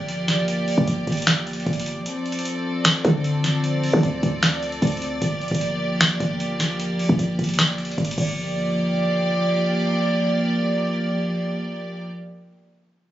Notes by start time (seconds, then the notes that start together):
Already playing: G1 F3 A#3 G4 D5
0.09 closed hi-hat
0.28 snare, closed hi-hat
0.48 closed hi-hat
0.68 open hi-hat
0.78 D2, kick
0.87 G1, closed hi-hat
1.07 G1, kick, closed hi-hat
1.12 closed hi-hat
1.17 closed hi-hat
1.22 closed hi-hat
1.27 finger snap, snare, closed hi-hat
1.47 closed hi-hat
1.53 closed hi-hat
1.60 closed hi-hat
1.66 G1, kick, closed hi-hat
1.73 closed hi-hat
1.80 closed hi-hat
1.86 closed hi-hat
1.96 A#1
2.06 F3 C4 A4 D5, closed hi-hat
2.26 closed hi-hat
2.32 closed hi-hat
2.39 closed hi-hat
2.45 closed hi-hat
2.85 finger snap, snare, closed hi-hat
3.05 D3, kick, closed hi-hat
3.24 closed hi-hat
3.44 snare, closed hi-hat
3.64 closed hi-hat
3.84 open hi-hat
3.93 D3, kick
4.03 D2, closed hi-hat
4.23 D2, kick, closed hi-hat
4.43 finger snap, snare, closed hi-hat
4.62 closed hi-hat
4.72 closed hi-hat
4.82 D2, kick, closed hi-hat
4.87 closed hi-hat
4.92 closed hi-hat
4.97 closed hi-hat
5.02 closed hi-hat
5.22 G1 F3 A#3 G4, kick, closed hi-hat
5.42 closed hi-hat
5.48 G1, kick, closed hi-hat
5.55 closed hi-hat
5.61 closed hi-hat
6.01 finger snap, snare, closed hi-hat
6.20 G1, kick, closed hi-hat
6.40 closed hi-hat
6.60 snare, closed hi-hat
6.80 closed hi-hat
6.99 open hi-hat
7.09 D2, kick
7.19 G1, closed hi-hat
7.39 G1, kick, closed hi-hat
7.44 closed hi-hat
7.49 closed hi-hat
7.54 closed hi-hat
7.59 finger snap, snare, closed hi-hat
7.78 closed hi-hat
7.85 closed hi-hat
7.91 closed hi-hat
7.98 G1, kick, closed hi-hat
8.05 closed hi-hat
8.11 closed hi-hat
8.18 G1 F3 A#3 G4 D5, kick, crash